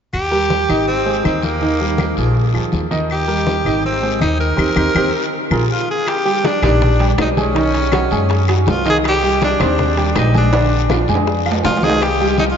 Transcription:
0.13 upright bass D#2, tenor saxophone G4, high conga, long guiro, claves
0.31 grand piano G3 G4 A#4, high conga
0.50 high conga, short guiro
0.69 upright bass G#1, grand piano D#3 D#4 D#5, high conga, short guiro, claves
0.87 tenor saxophone C4, high conga, long guiro
1.06 grand piano G#3 G#4 C5, high conga
1.24 upright bass D#2, grand piano D#3 D#4 D#5, tenor saxophone C4, high conga, short guiro, claves
1.43 tenor saxophone A#3, high conga, short guiro
1.61 grand piano D#3 D#4 D#5, high conga, long guiro
1.80 grand piano G3 G4 A#4, high conga
1.98 high conga, short guiro, claves
2.17 upright bass A#1, grand piano F3 F4 G#4, high conga, short guiro
2.35 high conga, long guiro
2.54 upright bass D2, grand piano F3 F4 G#4, high conga, claves
2.72 upright bass D#2, high conga, short guiro
2.91 grand piano D#3 D#4 D#5, high conga, short guiro
3.10 tenor saxophone G4, high conga, long guiro, claves
3.28 grand piano G3 G4 A#4, high conga
3.47 high conga, short guiro
3.65 upright bass G#1, grand piano D#3 D#4 D#5, high conga, short guiro, claves
3.84 tenor saxophone C4, high conga, long guiro
4.03 grand piano G#3 G#4 C5, high conga
4.21 upright bass D#2, grand piano D#3 D#4 D#5, tenor saxophone D#4, high conga, short guiro, claves
4.40 tenor saxophone A#4, short guiro
4.57 upright bass D#2, grand piano C4 D#4 G4, high conga, long guiro, claves
4.76 upright bass D#2, grand piano C4 D#4 G4, high conga, long guiro, claves
4.95 upright bass D#2, grand piano C4 D#4 G4, high conga, long guiro, claves
5.51 upright bass A#1, grand piano F4 G#4 A#4, high conga, long guiro, claves
5.72 tenor saxophone F4
5.91 tenor saxophone G#4
6.07 tenor saxophone G4, high bongo, high conga, high timbale, long guiro, claves
6.25 grand piano G3 G4 G5, high conga
6.44 tenor saxophone D4, high bongo, high conga, high timbale, low timbale, short guiro
6.62 upright bass A#1, grand piano D#3 G4 D5, tenor saxophone D4, high conga, low conga, high timbale, short guiro, claves
6.82 high bongo, high conga, low conga, long guiro
7.00 grand piano G3 G4 G5, high conga, high timbale
7.18 upright bass B1, tenor saxophone D#4, high bongo, low bongo, high conga, high timbale, low timbale, short guiro, claves
7.37 grand piano G#3 G#4 G#5, tenor saxophone C#4, high conga, short guiro
7.55 grand piano D#3 D#4 D#5, high bongo, high conga, high timbale, long guiro
7.74 high conga, high timbale
7.92 grand piano F#3 F#4 F#5, high bongo, high conga, high timbale, low timbale, short guiro, claves
8.11 upright bass F#2, grand piano G#3 G#4 G#5, high bongo, high conga, short guiro
8.29 high bongo, high conga, high timbale, long guiro
8.48 grand piano F#3 F#4 F#5, high bongo, high conga, high timbale, claves
8.66 upright bass C2, high bongo, low bongo, high conga, low timbale, short guiro
8.70 tenor saxophone F4
8.85 grand piano D#3 D#4 D#5, high bongo, high conga, high timbale, short guiro
8.90 tenor saxophone G#4
9.04 high bongo, high conga, high timbale, long guiro, claves
9.08 tenor saxophone G4
9.23 grand piano G3 G4 G5, high conga
9.41 tenor saxophone D4, high bongo, high conga, high timbale, low timbale, short guiro
9.59 upright bass D#2, grand piano D#3 C4 C5, tenor saxophone D4, high conga, low conga, high timbale, short guiro, claves
9.78 high bongo, high conga, low conga, long guiro
9.97 grand piano G3 G4 G5, high conga, high timbale
10.16 upright bass A#1, tenor saxophone D#4, high bongo, low bongo, high conga, high timbale, low timbale, short guiro, claves
10.34 grand piano G#3 G#4 G#5, tenor saxophone D4, high conga, short guiro
10.53 grand piano D3 D4 D5, high bongo, high conga, high timbale, long guiro
10.71 high conga
10.90 grand piano F3 F4 F5, high bongo, high conga, high timbale, short guiro, claves
11.08 upright bass F2, grand piano G#3 G#4 G#5, high bongo, high conga, short guiro
11.15 high timbale
11.27 high bongo, high conga, long guiro
11.45 grand piano F3 F4 F5, high bongo, high conga, claves
11.52 low timbale
11.64 upright bass C2, tenor saxophone F4, high bongo, low bongo, high conga, low timbale, short guiro
11.77 low timbale
11.82 grand piano D#3 D#4 D#5, tenor saxophone G#4, high bongo, high conga, short guiro
11.90 low timbale
12.01 tenor saxophone G4, high bongo, high conga, high timbale, long guiro, claves
12.20 grand piano G3 G4 G5, high conga
12.38 tenor saxophone D#4, high bongo, high conga, high timbale, low timbale, short guiro
12.51 tenor saxophone F4

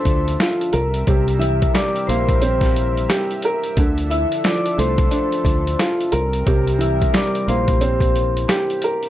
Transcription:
Already playing: upright piano D3 F3 A3 D4 E4, analog synth pad F3 D4 A4 E5, vibraphone C5 C6
0.05 fingered electric bass D2, kick, closed hi-hat
0.28 closed hi-hat
0.40 upright piano F4, finger snap, snare, closed hi-hat
0.61 closed hi-hat
0.73 fingered electric bass C2, analog synth pad G3 C4 A#4 E5, upright piano A#4, closed hi-hat
0.94 closed hi-hat
1.07 fingered electric bass C2, upright piano C3, kick, closed hi-hat
1.28 closed hi-hat
1.39 upright piano E3, vibraphone E5 E6, closed hi-hat
1.62 kick, closed hi-hat
1.73 upright piano G3, vibraphone D5 D6, finger snap, snare, closed hi-hat
1.96 closed hi-hat
2.07 fingered electric bass A#1, upright piano A#3, vibraphone C5 C6, closed hi-hat
2.28 kick, closed hi-hat
2.42 upright piano C4, closed hi-hat
2.61 kick, snare, closed hi-hat
2.76 closed hi-hat
2.97 closed hi-hat
3.09 upright piano G4, finger snap, snare, closed hi-hat
3.31 closed hi-hat
3.42 upright piano A#4, closed hi-hat
3.63 closed hi-hat
3.77 fingered electric bass D2, upright piano D3, analog synth pad F3 D4 A4, kick, closed hi-hat
3.98 closed hi-hat
4.10 upright piano E4, vibraphone E5 E6, closed hi-hat
4.32 closed hi-hat
4.44 upright piano F3, vibraphone D5 D6, finger snap, snare, closed hi-hat
4.66 closed hi-hat
4.78 fingered electric bass C2, upright piano A3, vibraphone C5 C6, closed hi-hat
4.98 kick, closed hi-hat
5.11 upright piano D4, closed hi-hat
5.32 closed hi-hat
5.45 fingered electric bass D2, kick, closed hi-hat
5.67 closed hi-hat
5.79 upright piano F4, finger snap, snare, closed hi-hat
6.01 closed hi-hat
6.12 fingered electric bass C2, analog synth pad G3 C4 A#4, upright piano A#4, closed hi-hat
6.33 closed hi-hat
6.47 fingered electric bass C2, upright piano C3, kick, closed hi-hat
6.67 closed hi-hat
6.78 upright piano E3, vibraphone E5 E6, closed hi-hat
7.01 kick, closed hi-hat
7.13 upright piano G3, vibraphone D5 D6, finger snap, snare, closed hi-hat
7.35 closed hi-hat
7.48 fingered electric bass A#1, upright piano A#3, vibraphone C5 C6, closed hi-hat
7.68 kick, closed hi-hat
7.81 upright piano C4, closed hi-hat
8.00 kick, closed hi-hat
8.16 closed hi-hat
8.37 closed hi-hat
8.48 upright piano G4, finger snap, snare, closed hi-hat
8.70 closed hi-hat
8.82 upright piano A#4, closed hi-hat
9.03 closed hi-hat

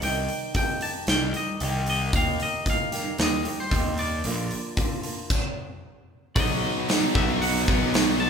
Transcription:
0.01 picked electric bass C2, steel-string acoustic guitar C3 D#3 G3 D#4 G4, clean electric guitar G5, open hi-hat
0.29 open hi-hat
0.54 steel-string acoustic guitar D#3 G3 D#4 G4, clean electric guitar G5, kick, open hi-hat
0.81 steel-string acoustic guitar D#4 G4, clean electric guitar A5, open hi-hat
0.85 steel-string acoustic guitar G3
1.07 picked electric bass C2, steel-string acoustic guitar D#3 G3 D#4, clean electric guitar G5, snare, open hi-hat
1.11 steel-string acoustic guitar G4
1.34 steel-string acoustic guitar G3 D#4 G4, clean electric guitar D#5, open hi-hat
1.60 picked electric bass C2, steel-string acoustic guitar C3 D#3 G3 D#4 G4, open hi-hat
1.86 clean electric guitar D#5, open hi-hat
2.13 picked electric bass D#2, steel-string acoustic guitar D#3 A#3 D#4 G4, clean electric guitar F5, kick, open hi-hat
2.40 clean electric guitar D#5, open hi-hat
2.65 steel-string acoustic guitar D#3 A#3 D#4 G4, kick, open hi-hat
2.70 clean electric guitar F5
2.92 steel-string acoustic guitar A#3 D#4 G4, snare, open hi-hat
3.18 picked electric bass D#2, steel-string acoustic guitar D#3 A#3 D#4 G4, snare, open hi-hat
3.22 clean electric guitar D#5
3.44 steel-string acoustic guitar A#3 D#4 G4, open hi-hat
3.60 clean electric guitar C5
3.70 picked electric bass D#2, steel-string acoustic guitar D#3 A#3 D#4 G4, kick, open hi-hat
3.98 clean electric guitar D5, open hi-hat
4.24 picked electric bass A#1, steel-string acoustic guitar A#2 D3 A#3 D4 F4, open hi-hat
4.51 open hi-hat
4.76 steel-string acoustic guitar D3 A#3 D4 F4, kick, open hi-hat
5.02 steel-string acoustic guitar A#3 D4 F4, open hi-hat
5.30 kick, crash
6.36 picked electric bass B1, overdriven electric guitar B2 F#3 B3 D#4, clean electric guitar D#5, kick, open hi-hat
6.63 overdriven electric guitar B2 F#3 B3 D#4
6.89 overdriven electric guitar B2 F#3 B3 D#4, snare, open hi-hat
7.15 picked electric bass B1, overdriven electric guitar B2 F#3 B3 D#4, clean electric guitar E5, kick
7.42 overdriven electric guitar B2 F#3 B3 D#4, clean electric guitar F#5, open hi-hat
7.68 picked electric bass B1, overdriven electric guitar B2 F#3 B3 D#4, kick
7.94 overdriven electric guitar B2 F#3 B3 D#4, snare, open hi-hat
8.20 overdriven electric guitar B2 F#3 B3 D#4, clean electric guitar A5

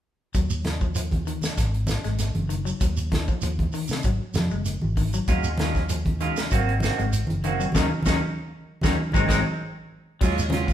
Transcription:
0.34 fingered electric bass D#2, clean electric guitar F#3, kick, closed hi-hat, shekere
0.50 fingered electric bass D#2, shekere
0.65 snare, closed hi-hat, high conga
0.81 clean electric guitar F3, kick, shekere
0.95 clean electric guitar F3, closed hi-hat, shekere
1.11 kick, closed hi-hat, high conga
1.26 clean electric guitar D#3, closed hi-hat, shekere
1.42 snare, closed hi-hat, high conga, shekere
1.57 fingered electric bass G#1, muted clean electric guitar stroke, kick, snare, closed hi-hat, shekere
1.74 closed hi-hat
1.87 snare, closed hi-hat, high conga, shekere
2.04 fingered electric bass G#1, clean electric guitar G#3, snare, closed hi-hat, shekere
2.18 snare, closed hi-hat, shekere
2.35 fingered electric bass F#1, closed hi-hat, high conga
2.49 clean electric guitar D#3, closed hi-hat, shekere
2.65 clean electric guitar F#3, shekere
2.81 fingered electric bass D#2, clean electric guitar F#3, kick, closed hi-hat, shekere
2.97 closed hi-hat, shekere
3.12 clean electric guitar D#3, kick, snare, closed hi-hat, high conga
3.28 clean electric guitar F3, kick, shekere
3.41 fingered electric bass D#2, clean electric guitar F3, closed hi-hat, shekere
3.59 kick, closed hi-hat, high conga
3.72 clean electric guitar D#3, open hi-hat, shekere
3.88 fingered electric bass C3, snare, shekere
4.03 fingered electric bass G#1, clean electric guitar F#3, kick, closed hi-hat, shekere
4.34 fingered electric bass F2, snare, closed hi-hat, high conga, shekere
4.50 fingered electric bass F#1, clean electric guitar G#3, shekere
4.65 closed hi-hat, shekere
4.81 fingered electric bass G#1, high conga
4.97 clean electric guitar D#3, kick, open hi-hat, shekere
5.13 clean electric guitar F#3, closed hi-hat, shekere
5.28 fingered electric bass D#2, clean electric guitar F#3 G#3 C#4 F4, kick, closed hi-hat, shekere
5.44 fingered electric bass D#2, shekere
5.58 clean electric guitar D#3 F#3 G#3 C#4 F4, snare, closed hi-hat, high conga
5.75 clean electric guitar F3, kick, snare, shekere
5.89 clean electric guitar F3, closed hi-hat, shekere
6.05 kick, closed hi-hat, high conga
6.20 clean electric guitar D#3 F#3 G#3 C#4 F4, closed hi-hat, shekere
6.37 snare, closed hi-hat, shekere
6.51 fingered electric bass G#1, clean electric guitar D#3 F#3 A#3 C4 F#4, kick, closed hi-hat, shekere
6.69 closed hi-hat
6.80 clean electric guitar D#3 A#3 C4 F#4, closed hi-hat, high conga, shekere
6.84 snare
6.98 fingered electric bass G#1, clean electric guitar G#3, closed hi-hat, shekere
7.13 closed hi-hat, shekere
7.27 fingered electric bass F#1, closed hi-hat, high conga
7.44 clean electric guitar D#3 A#3 C4 F#4, closed hi-hat, shekere
7.60 clean electric guitar F#3, shekere
7.72 fingered electric bass D#2, clean electric guitar C#3 D#3 F#3 A#3 C#4 D#4, kick, high conga, shekere
7.76 snare
8.03 fingered electric bass D#2, clean electric guitar D#3 F#3 D#4, kick, high conga, shekere
8.07 clean electric guitar C#3 A#3 C#4, snare
8.81 fingered electric bass D#2, clean electric guitar C#3 D#3 F#3 A#3 C#4 D#4, kick, snare, high conga, shekere
9.12 fingered electric bass G#1, clean electric guitar D#3 F#3 G#3 C4 D#4, kick, high conga, shekere
9.27 fingered electric bass G#1, clean electric guitar D#3 F#3 G#3 C4 D#4, kick, snare, high conga, shekere
10.21 fingered electric bass D#2, clean electric guitar F#3 G#3 C#4 F4, tine electric piano F#3 G#3 C#4 F4, kick, crash, shekere
10.38 closed hi-hat, shekere
10.50 clean electric guitar C#3 F#3 C#4 F4, tine electric piano F#3 G#3 C#4 F4, muted clean electric guitar stroke, snare, closed hi-hat, high conga
10.67 muted clean electric guitar stroke, kick, closed hi-hat, shekere

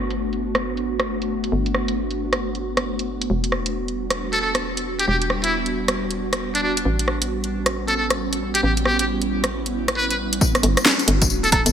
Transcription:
Already playing: fm bass G1, ambient pad A3 B3 D4 F#4
0.10 closed hi-hat
0.33 closed hi-hat
0.55 cross-stick, closed hi-hat
0.77 closed hi-hat
1.00 cross-stick, closed hi-hat
1.22 closed hi-hat
1.44 closed hi-hat
1.52 fm bass G1
1.66 closed hi-hat
1.74 cross-stick
1.88 closed hi-hat
2.11 closed hi-hat
2.33 cross-stick, closed hi-hat
2.55 closed hi-hat
2.77 cross-stick, closed hi-hat
2.99 closed hi-hat
3.22 closed hi-hat
3.30 fm bass E1, ambient pad G3 D4 F#4
3.44 closed hi-hat
3.52 cross-stick
3.66 closed hi-hat
3.88 closed hi-hat
4.10 cross-stick, closed hi-hat
4.33 muted trumpet A4, closed hi-hat
4.41 muted trumpet A4
4.55 cross-stick, closed hi-hat
4.77 closed hi-hat
4.99 muted trumpet G4, closed hi-hat
5.08 fm bass E1, muted trumpet G4
5.22 closed hi-hat
5.30 cross-stick
5.44 muted trumpet E4, closed hi-hat
5.66 closed hi-hat
5.88 cross-stick, closed hi-hat
6.11 closed hi-hat
6.33 cross-stick, closed hi-hat
6.55 muted trumpet D4, closed hi-hat
6.63 muted trumpet D4
6.77 closed hi-hat
6.85 fm bass A1, ambient pad G3 B3 C#4
6.99 closed hi-hat
7.08 cross-stick
7.22 closed hi-hat
7.44 closed hi-hat
7.66 cross-stick, closed hi-hat
7.88 muted trumpet A4, closed hi-hat
7.96 muted trumpet A4
8.10 cross-stick, closed hi-hat
8.33 closed hi-hat
8.55 muted trumpet G4, closed hi-hat
8.63 fm bass A1, ambient pad E4, muted trumpet G4
8.77 closed hi-hat
8.85 muted trumpet G4, cross-stick
8.99 muted trumpet G4, closed hi-hat
9.22 closed hi-hat
9.44 cross-stick, closed hi-hat
9.66 closed hi-hat
9.88 cross-stick, closed hi-hat
9.97 muted trumpet B4
10.11 muted trumpet B4, closed hi-hat
10.33 closed hi-hat
10.41 ambient pad A3 B3 D4 F#4, kick, tambourine
10.55 cross-stick, closed hi-hat, tambourine
10.63 fm bass G1, open hi-hat
10.77 cross-stick, closed hi-hat, tambourine
10.86 snare, tambourine
10.99 closed hi-hat, tambourine
11.08 fm bass G1, open hi-hat
11.22 kick, closed hi-hat, tambourine
11.30 fm bass D1, tambourine
11.44 muted trumpet A4, closed hi-hat, tambourine
11.52 muted trumpet A4, kick, open hi-hat, high woodblock
11.66 fm bass G1, closed hi-hat, tambourine

